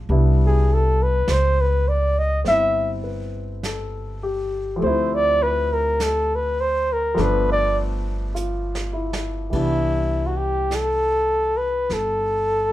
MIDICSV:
0, 0, Header, 1, 5, 480
1, 0, Start_track
1, 0, Key_signature, 0, "major"
1, 0, Tempo, 1181102
1, 39, Time_signature, 4, 2, 24, 8
1, 5171, End_track
2, 0, Start_track
2, 0, Title_t, "Flugelhorn"
2, 0, Program_c, 0, 56
2, 188, Note_on_c, 0, 68, 68
2, 299, Note_on_c, 0, 69, 71
2, 305, Note_off_c, 0, 68, 0
2, 417, Note_on_c, 0, 71, 74
2, 423, Note_off_c, 0, 69, 0
2, 533, Note_on_c, 0, 72, 83
2, 539, Note_off_c, 0, 71, 0
2, 654, Note_on_c, 0, 71, 72
2, 660, Note_off_c, 0, 72, 0
2, 766, Note_on_c, 0, 74, 78
2, 772, Note_off_c, 0, 71, 0
2, 889, Note_on_c, 0, 75, 79
2, 895, Note_off_c, 0, 74, 0
2, 981, Note_off_c, 0, 75, 0
2, 1007, Note_on_c, 0, 76, 81
2, 1201, Note_off_c, 0, 76, 0
2, 1963, Note_on_c, 0, 72, 77
2, 2092, Note_on_c, 0, 74, 90
2, 2098, Note_off_c, 0, 72, 0
2, 2205, Note_on_c, 0, 71, 77
2, 2211, Note_off_c, 0, 74, 0
2, 2329, Note_on_c, 0, 70, 78
2, 2335, Note_off_c, 0, 71, 0
2, 2449, Note_on_c, 0, 69, 72
2, 2455, Note_off_c, 0, 70, 0
2, 2582, Note_on_c, 0, 71, 71
2, 2588, Note_off_c, 0, 69, 0
2, 2685, Note_on_c, 0, 72, 83
2, 2691, Note_off_c, 0, 71, 0
2, 2817, Note_on_c, 0, 70, 70
2, 2823, Note_off_c, 0, 72, 0
2, 2933, Note_on_c, 0, 71, 74
2, 2939, Note_off_c, 0, 70, 0
2, 3053, Note_off_c, 0, 71, 0
2, 3056, Note_on_c, 0, 74, 82
2, 3161, Note_off_c, 0, 74, 0
2, 3884, Note_on_c, 0, 64, 73
2, 4172, Note_on_c, 0, 66, 52
2, 4178, Note_off_c, 0, 64, 0
2, 4215, Note_on_c, 0, 67, 66
2, 4221, Note_off_c, 0, 66, 0
2, 4369, Note_on_c, 0, 69, 78
2, 4375, Note_off_c, 0, 67, 0
2, 4703, Note_on_c, 0, 71, 72
2, 4709, Note_off_c, 0, 69, 0
2, 4851, Note_on_c, 0, 69, 77
2, 4857, Note_off_c, 0, 71, 0
2, 5171, Note_off_c, 0, 69, 0
2, 5171, End_track
3, 0, Start_track
3, 0, Title_t, "Grand piano"
3, 0, Program_c, 1, 0
3, 0, Control_c, 1, 64, 127
3, 0, Note_on_c, 1, 65, 46
3, 39, Note_on_c, 1, 55, 40
3, 39, Note_on_c, 1, 62, 40
3, 41, Note_on_c, 1, 59, 38
3, 43, Control_c, 1, 64, 0
3, 47, Note_on_c, 1, 64, 48
3, 52, Note_off_c, 1, 65, 0
3, 117, Control_c, 1, 64, 127
3, 994, Note_on_c, 1, 60, 37
3, 1004, Note_off_c, 1, 64, 0
3, 1010, Note_on_c, 1, 64, 43
3, 1234, Note_on_c, 1, 71, 37
3, 1484, Note_on_c, 1, 69, 42
3, 1579, Note_off_c, 1, 71, 0
3, 1720, Note_on_c, 1, 67, 46
3, 1868, Note_off_c, 1, 69, 0
3, 1935, Note_on_c, 1, 53, 47
3, 1946, Note_on_c, 1, 57, 42
3, 1955, Note_off_c, 1, 60, 0
3, 1956, Note_off_c, 1, 55, 0
3, 1957, Note_off_c, 1, 62, 0
3, 1958, Note_off_c, 1, 59, 0
3, 1962, Control_c, 1, 64, 0
3, 1963, Note_off_c, 1, 64, 0
3, 1964, Note_on_c, 1, 60, 44
3, 1976, Note_on_c, 1, 64, 52
3, 2041, Control_c, 1, 64, 127
3, 2062, Note_off_c, 1, 67, 0
3, 2898, Note_off_c, 1, 53, 0
3, 2903, Note_off_c, 1, 57, 0
3, 2904, Note_on_c, 1, 53, 54
3, 2910, Note_on_c, 1, 57, 48
3, 2915, Note_on_c, 1, 59, 46
3, 2919, Note_off_c, 1, 60, 0
3, 2921, Control_c, 1, 64, 0
3, 2923, Note_on_c, 1, 62, 55
3, 2926, Note_off_c, 1, 64, 0
3, 2992, Control_c, 1, 64, 127
3, 3392, Note_on_c, 1, 65, 41
3, 3630, Note_on_c, 1, 64, 43
3, 3782, Note_off_c, 1, 65, 0
3, 3861, Note_on_c, 1, 52, 34
3, 3864, Note_off_c, 1, 59, 0
3, 3866, Note_on_c, 1, 55, 33
3, 3870, Note_off_c, 1, 53, 0
3, 3870, Note_on_c, 1, 59, 33
3, 3873, Note_off_c, 1, 57, 0
3, 3873, Note_off_c, 1, 62, 0
3, 3879, Note_on_c, 1, 62, 41
3, 3881, Control_c, 1, 64, 0
3, 3962, Control_c, 1, 64, 127
3, 3977, Note_off_c, 1, 64, 0
3, 5156, Note_off_c, 1, 55, 0
3, 5171, Note_off_c, 1, 52, 0
3, 5171, Note_off_c, 1, 59, 0
3, 5171, Note_off_c, 1, 62, 0
3, 5171, End_track
4, 0, Start_track
4, 0, Title_t, "Upright bass"
4, 0, Program_c, 2, 32
4, 36, Note_on_c, 2, 36, 71
4, 501, Note_off_c, 2, 36, 0
4, 519, Note_on_c, 2, 37, 62
4, 982, Note_off_c, 2, 37, 0
4, 998, Note_on_c, 2, 31, 71
4, 1941, Note_off_c, 2, 31, 0
4, 1959, Note_on_c, 2, 38, 70
4, 2901, Note_off_c, 2, 38, 0
4, 2915, Note_on_c, 2, 31, 73
4, 3859, Note_off_c, 2, 31, 0
4, 3873, Note_on_c, 2, 36, 63
4, 4817, Note_off_c, 2, 36, 0
4, 4837, Note_on_c, 2, 31, 68
4, 5171, Note_off_c, 2, 31, 0
4, 5171, End_track
5, 0, Start_track
5, 0, Title_t, "Drums"
5, 39, Note_on_c, 9, 25, 34
5, 519, Note_off_c, 9, 25, 0
5, 519, Note_on_c, 9, 25, 36
5, 519, Note_on_c, 9, 38, 39
5, 519, Note_on_c, 9, 44, 40
5, 559, Note_off_c, 9, 38, 0
5, 559, Note_off_c, 9, 44, 0
5, 996, Note_off_c, 9, 25, 0
5, 996, Note_on_c, 9, 25, 27
5, 996, Note_on_c, 9, 38, 26
5, 1037, Note_off_c, 9, 38, 0
5, 1477, Note_off_c, 9, 25, 0
5, 1477, Note_on_c, 9, 25, 34
5, 1477, Note_on_c, 9, 38, 39
5, 1477, Note_on_c, 9, 44, 47
5, 1517, Note_off_c, 9, 38, 0
5, 1517, Note_off_c, 9, 44, 0
5, 1960, Note_off_c, 9, 25, 0
5, 1960, Note_on_c, 9, 25, 29
5, 2438, Note_off_c, 9, 25, 0
5, 2438, Note_on_c, 9, 25, 28
5, 2438, Note_on_c, 9, 38, 41
5, 2438, Note_on_c, 9, 44, 54
5, 2479, Note_off_c, 9, 38, 0
5, 2479, Note_off_c, 9, 44, 0
5, 2916, Note_off_c, 9, 25, 0
5, 2916, Note_on_c, 9, 25, 35
5, 2916, Note_on_c, 9, 38, 27
5, 2957, Note_off_c, 9, 38, 0
5, 3397, Note_on_c, 9, 44, 54
5, 3438, Note_off_c, 9, 44, 0
5, 3556, Note_on_c, 9, 38, 47
5, 3596, Note_off_c, 9, 38, 0
5, 3711, Note_on_c, 9, 38, 58
5, 3752, Note_off_c, 9, 38, 0
5, 3871, Note_off_c, 9, 25, 0
5, 3871, Note_on_c, 9, 25, 22
5, 3871, Note_on_c, 9, 51, 43
5, 3872, Note_on_c, 9, 36, 52
5, 3912, Note_off_c, 9, 51, 0
5, 3913, Note_off_c, 9, 36, 0
5, 4352, Note_off_c, 9, 25, 0
5, 4352, Note_on_c, 9, 25, 34
5, 4352, Note_on_c, 9, 38, 35
5, 4352, Note_on_c, 9, 44, 42
5, 4393, Note_off_c, 9, 38, 0
5, 4393, Note_off_c, 9, 44, 0
5, 4834, Note_off_c, 9, 25, 0
5, 4834, Note_on_c, 9, 25, 27
5, 4834, Note_on_c, 9, 38, 24
5, 4875, Note_off_c, 9, 38, 0
5, 5171, Note_off_c, 9, 25, 0
5, 5171, End_track
0, 0, End_of_file